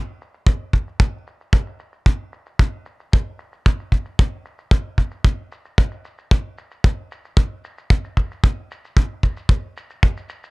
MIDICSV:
0, 0, Header, 1, 2, 480
1, 0, Start_track
1, 0, Tempo, 530973
1, 424, Time_signature, 4, 2, 24, 8
1, 9497, End_track
2, 0, Start_track
2, 0, Title_t, "Drums"
2, 194, Note_on_c, 9, 82, 78
2, 284, Note_off_c, 9, 82, 0
2, 307, Note_on_c, 9, 82, 41
2, 397, Note_off_c, 9, 82, 0
2, 421, Note_on_c, 9, 36, 104
2, 428, Note_on_c, 9, 82, 50
2, 511, Note_off_c, 9, 36, 0
2, 519, Note_off_c, 9, 82, 0
2, 663, Note_on_c, 9, 36, 56
2, 673, Note_on_c, 9, 82, 80
2, 753, Note_off_c, 9, 36, 0
2, 764, Note_off_c, 9, 82, 0
2, 792, Note_on_c, 9, 82, 41
2, 882, Note_off_c, 9, 82, 0
2, 903, Note_on_c, 9, 36, 113
2, 911, Note_on_c, 9, 82, 50
2, 993, Note_off_c, 9, 36, 0
2, 1001, Note_off_c, 9, 82, 0
2, 1150, Note_on_c, 9, 82, 79
2, 1240, Note_off_c, 9, 82, 0
2, 1272, Note_on_c, 9, 82, 48
2, 1362, Note_off_c, 9, 82, 0
2, 1382, Note_on_c, 9, 36, 112
2, 1472, Note_off_c, 9, 36, 0
2, 1507, Note_on_c, 9, 82, 44
2, 1598, Note_off_c, 9, 82, 0
2, 1622, Note_on_c, 9, 82, 70
2, 1712, Note_off_c, 9, 82, 0
2, 1740, Note_on_c, 9, 82, 42
2, 1830, Note_off_c, 9, 82, 0
2, 1863, Note_on_c, 9, 36, 96
2, 1953, Note_off_c, 9, 36, 0
2, 2102, Note_on_c, 9, 82, 79
2, 2192, Note_off_c, 9, 82, 0
2, 2226, Note_on_c, 9, 82, 49
2, 2316, Note_off_c, 9, 82, 0
2, 2345, Note_on_c, 9, 36, 105
2, 2354, Note_on_c, 9, 82, 51
2, 2435, Note_off_c, 9, 36, 0
2, 2444, Note_off_c, 9, 82, 0
2, 2582, Note_on_c, 9, 82, 77
2, 2673, Note_off_c, 9, 82, 0
2, 2710, Note_on_c, 9, 82, 44
2, 2801, Note_off_c, 9, 82, 0
2, 2820, Note_on_c, 9, 82, 49
2, 2832, Note_on_c, 9, 36, 109
2, 2911, Note_off_c, 9, 82, 0
2, 2923, Note_off_c, 9, 36, 0
2, 3062, Note_on_c, 9, 82, 75
2, 3152, Note_off_c, 9, 82, 0
2, 3187, Note_on_c, 9, 82, 47
2, 3277, Note_off_c, 9, 82, 0
2, 3309, Note_on_c, 9, 36, 97
2, 3399, Note_off_c, 9, 36, 0
2, 3432, Note_on_c, 9, 82, 46
2, 3522, Note_off_c, 9, 82, 0
2, 3544, Note_on_c, 9, 36, 55
2, 3550, Note_on_c, 9, 82, 68
2, 3635, Note_off_c, 9, 36, 0
2, 3640, Note_off_c, 9, 82, 0
2, 3664, Note_on_c, 9, 82, 45
2, 3755, Note_off_c, 9, 82, 0
2, 3789, Note_on_c, 9, 36, 114
2, 3880, Note_off_c, 9, 36, 0
2, 4024, Note_on_c, 9, 82, 74
2, 4115, Note_off_c, 9, 82, 0
2, 4144, Note_on_c, 9, 82, 43
2, 4235, Note_off_c, 9, 82, 0
2, 4260, Note_on_c, 9, 36, 108
2, 4269, Note_on_c, 9, 82, 54
2, 4351, Note_off_c, 9, 36, 0
2, 4360, Note_off_c, 9, 82, 0
2, 4501, Note_on_c, 9, 36, 52
2, 4513, Note_on_c, 9, 82, 80
2, 4592, Note_off_c, 9, 36, 0
2, 4603, Note_off_c, 9, 82, 0
2, 4621, Note_on_c, 9, 82, 48
2, 4711, Note_off_c, 9, 82, 0
2, 4742, Note_on_c, 9, 36, 105
2, 4752, Note_on_c, 9, 82, 56
2, 4832, Note_off_c, 9, 36, 0
2, 4842, Note_off_c, 9, 82, 0
2, 4989, Note_on_c, 9, 82, 76
2, 5079, Note_off_c, 9, 82, 0
2, 5107, Note_on_c, 9, 82, 42
2, 5198, Note_off_c, 9, 82, 0
2, 5225, Note_on_c, 9, 36, 108
2, 5228, Note_on_c, 9, 82, 56
2, 5316, Note_off_c, 9, 36, 0
2, 5318, Note_off_c, 9, 82, 0
2, 5346, Note_on_c, 9, 82, 45
2, 5436, Note_off_c, 9, 82, 0
2, 5467, Note_on_c, 9, 82, 70
2, 5557, Note_off_c, 9, 82, 0
2, 5588, Note_on_c, 9, 82, 45
2, 5679, Note_off_c, 9, 82, 0
2, 5707, Note_on_c, 9, 36, 110
2, 5797, Note_off_c, 9, 36, 0
2, 5948, Note_on_c, 9, 82, 73
2, 6038, Note_off_c, 9, 82, 0
2, 6067, Note_on_c, 9, 82, 45
2, 6157, Note_off_c, 9, 82, 0
2, 6185, Note_on_c, 9, 36, 105
2, 6276, Note_off_c, 9, 36, 0
2, 6433, Note_on_c, 9, 82, 84
2, 6523, Note_off_c, 9, 82, 0
2, 6552, Note_on_c, 9, 82, 45
2, 6643, Note_off_c, 9, 82, 0
2, 6661, Note_on_c, 9, 36, 101
2, 6673, Note_on_c, 9, 82, 54
2, 6752, Note_off_c, 9, 36, 0
2, 6763, Note_off_c, 9, 82, 0
2, 6910, Note_on_c, 9, 82, 79
2, 7000, Note_off_c, 9, 82, 0
2, 7032, Note_on_c, 9, 82, 48
2, 7122, Note_off_c, 9, 82, 0
2, 7144, Note_on_c, 9, 36, 102
2, 7149, Note_on_c, 9, 82, 54
2, 7234, Note_off_c, 9, 36, 0
2, 7239, Note_off_c, 9, 82, 0
2, 7271, Note_on_c, 9, 82, 42
2, 7362, Note_off_c, 9, 82, 0
2, 7386, Note_on_c, 9, 36, 48
2, 7391, Note_on_c, 9, 82, 84
2, 7476, Note_off_c, 9, 36, 0
2, 7482, Note_off_c, 9, 82, 0
2, 7515, Note_on_c, 9, 82, 50
2, 7605, Note_off_c, 9, 82, 0
2, 7626, Note_on_c, 9, 36, 105
2, 7717, Note_off_c, 9, 36, 0
2, 7876, Note_on_c, 9, 82, 82
2, 7967, Note_off_c, 9, 82, 0
2, 7998, Note_on_c, 9, 82, 43
2, 8089, Note_off_c, 9, 82, 0
2, 8106, Note_on_c, 9, 36, 102
2, 8106, Note_on_c, 9, 82, 58
2, 8196, Note_off_c, 9, 36, 0
2, 8196, Note_off_c, 9, 82, 0
2, 8346, Note_on_c, 9, 36, 52
2, 8348, Note_on_c, 9, 82, 82
2, 8437, Note_off_c, 9, 36, 0
2, 8439, Note_off_c, 9, 82, 0
2, 8468, Note_on_c, 9, 82, 52
2, 8559, Note_off_c, 9, 82, 0
2, 8580, Note_on_c, 9, 36, 97
2, 8584, Note_on_c, 9, 82, 56
2, 8670, Note_off_c, 9, 36, 0
2, 8675, Note_off_c, 9, 82, 0
2, 8832, Note_on_c, 9, 82, 80
2, 8923, Note_off_c, 9, 82, 0
2, 8950, Note_on_c, 9, 82, 42
2, 9041, Note_off_c, 9, 82, 0
2, 9067, Note_on_c, 9, 36, 94
2, 9076, Note_on_c, 9, 82, 53
2, 9157, Note_off_c, 9, 36, 0
2, 9166, Note_off_c, 9, 82, 0
2, 9194, Note_on_c, 9, 82, 50
2, 9285, Note_off_c, 9, 82, 0
2, 9305, Note_on_c, 9, 82, 85
2, 9395, Note_off_c, 9, 82, 0
2, 9433, Note_on_c, 9, 82, 53
2, 9497, Note_off_c, 9, 82, 0
2, 9497, End_track
0, 0, End_of_file